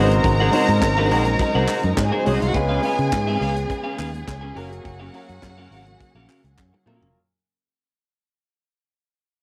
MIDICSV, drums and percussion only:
0, 0, Header, 1, 2, 480
1, 0, Start_track
1, 0, Tempo, 576369
1, 201, Time_signature, 4, 2, 24, 8
1, 7846, End_track
2, 0, Start_track
2, 0, Title_t, "Drums"
2, 94, Note_on_c, 9, 42, 58
2, 177, Note_off_c, 9, 42, 0
2, 197, Note_on_c, 9, 42, 77
2, 201, Note_on_c, 9, 36, 108
2, 281, Note_off_c, 9, 42, 0
2, 284, Note_off_c, 9, 36, 0
2, 437, Note_on_c, 9, 46, 69
2, 520, Note_off_c, 9, 46, 0
2, 566, Note_on_c, 9, 42, 46
2, 649, Note_off_c, 9, 42, 0
2, 676, Note_on_c, 9, 42, 74
2, 679, Note_on_c, 9, 38, 117
2, 680, Note_on_c, 9, 36, 124
2, 690, Note_on_c, 9, 39, 90
2, 760, Note_off_c, 9, 42, 0
2, 763, Note_off_c, 9, 36, 0
2, 763, Note_off_c, 9, 38, 0
2, 773, Note_off_c, 9, 39, 0
2, 923, Note_on_c, 9, 46, 69
2, 1006, Note_off_c, 9, 46, 0
2, 1040, Note_on_c, 9, 42, 49
2, 1124, Note_off_c, 9, 42, 0
2, 1159, Note_on_c, 9, 42, 62
2, 1160, Note_on_c, 9, 36, 110
2, 1243, Note_off_c, 9, 42, 0
2, 1244, Note_off_c, 9, 36, 0
2, 1402, Note_on_c, 9, 39, 79
2, 1406, Note_on_c, 9, 46, 57
2, 1485, Note_off_c, 9, 39, 0
2, 1490, Note_off_c, 9, 46, 0
2, 1525, Note_on_c, 9, 42, 46
2, 1608, Note_off_c, 9, 42, 0
2, 1638, Note_on_c, 9, 42, 54
2, 1641, Note_on_c, 9, 38, 110
2, 1642, Note_on_c, 9, 36, 109
2, 1647, Note_on_c, 9, 39, 84
2, 1721, Note_off_c, 9, 42, 0
2, 1724, Note_off_c, 9, 38, 0
2, 1725, Note_off_c, 9, 36, 0
2, 1731, Note_off_c, 9, 39, 0
2, 1881, Note_on_c, 9, 46, 64
2, 1964, Note_off_c, 9, 46, 0
2, 2015, Note_on_c, 9, 42, 57
2, 2098, Note_off_c, 9, 42, 0
2, 2115, Note_on_c, 9, 42, 73
2, 2119, Note_on_c, 9, 36, 106
2, 2199, Note_off_c, 9, 42, 0
2, 2202, Note_off_c, 9, 36, 0
2, 2355, Note_on_c, 9, 46, 65
2, 2439, Note_off_c, 9, 46, 0
2, 2485, Note_on_c, 9, 42, 45
2, 2568, Note_off_c, 9, 42, 0
2, 2599, Note_on_c, 9, 42, 78
2, 2600, Note_on_c, 9, 36, 127
2, 2602, Note_on_c, 9, 38, 113
2, 2605, Note_on_c, 9, 39, 92
2, 2682, Note_off_c, 9, 42, 0
2, 2683, Note_off_c, 9, 36, 0
2, 2686, Note_off_c, 9, 38, 0
2, 2689, Note_off_c, 9, 39, 0
2, 2845, Note_on_c, 9, 46, 70
2, 2929, Note_off_c, 9, 46, 0
2, 2967, Note_on_c, 9, 42, 54
2, 3050, Note_off_c, 9, 42, 0
2, 3079, Note_on_c, 9, 36, 96
2, 3080, Note_on_c, 9, 42, 62
2, 3163, Note_off_c, 9, 36, 0
2, 3163, Note_off_c, 9, 42, 0
2, 3324, Note_on_c, 9, 39, 89
2, 3326, Note_on_c, 9, 46, 61
2, 3408, Note_off_c, 9, 39, 0
2, 3410, Note_off_c, 9, 46, 0
2, 3447, Note_on_c, 9, 42, 45
2, 3531, Note_off_c, 9, 42, 0
2, 3559, Note_on_c, 9, 42, 58
2, 3561, Note_on_c, 9, 36, 106
2, 3561, Note_on_c, 9, 38, 105
2, 3570, Note_on_c, 9, 39, 96
2, 3642, Note_off_c, 9, 42, 0
2, 3644, Note_off_c, 9, 36, 0
2, 3645, Note_off_c, 9, 38, 0
2, 3654, Note_off_c, 9, 39, 0
2, 3800, Note_on_c, 9, 46, 56
2, 3883, Note_off_c, 9, 46, 0
2, 3934, Note_on_c, 9, 42, 54
2, 4017, Note_off_c, 9, 42, 0
2, 4041, Note_on_c, 9, 36, 108
2, 4044, Note_on_c, 9, 42, 70
2, 4124, Note_off_c, 9, 36, 0
2, 4127, Note_off_c, 9, 42, 0
2, 4277, Note_on_c, 9, 46, 67
2, 4361, Note_off_c, 9, 46, 0
2, 4405, Note_on_c, 9, 42, 50
2, 4488, Note_off_c, 9, 42, 0
2, 4513, Note_on_c, 9, 42, 77
2, 4516, Note_on_c, 9, 38, 106
2, 4519, Note_on_c, 9, 36, 111
2, 4529, Note_on_c, 9, 39, 87
2, 4596, Note_off_c, 9, 42, 0
2, 4600, Note_off_c, 9, 38, 0
2, 4603, Note_off_c, 9, 36, 0
2, 4612, Note_off_c, 9, 39, 0
2, 4762, Note_on_c, 9, 46, 71
2, 4846, Note_off_c, 9, 46, 0
2, 4883, Note_on_c, 9, 42, 47
2, 4966, Note_off_c, 9, 42, 0
2, 5000, Note_on_c, 9, 42, 66
2, 5002, Note_on_c, 9, 36, 107
2, 5083, Note_off_c, 9, 42, 0
2, 5085, Note_off_c, 9, 36, 0
2, 5243, Note_on_c, 9, 39, 86
2, 5249, Note_on_c, 9, 46, 56
2, 5326, Note_off_c, 9, 39, 0
2, 5332, Note_off_c, 9, 46, 0
2, 5367, Note_on_c, 9, 42, 47
2, 5450, Note_off_c, 9, 42, 0
2, 5483, Note_on_c, 9, 39, 98
2, 5484, Note_on_c, 9, 36, 104
2, 5490, Note_on_c, 9, 38, 54
2, 5566, Note_off_c, 9, 39, 0
2, 5567, Note_off_c, 9, 36, 0
2, 5573, Note_off_c, 9, 38, 0
2, 5615, Note_on_c, 9, 48, 60
2, 5698, Note_off_c, 9, 48, 0
2, 5724, Note_on_c, 9, 45, 86
2, 5807, Note_off_c, 9, 45, 0
2, 5851, Note_on_c, 9, 43, 92
2, 5934, Note_off_c, 9, 43, 0
2, 7846, End_track
0, 0, End_of_file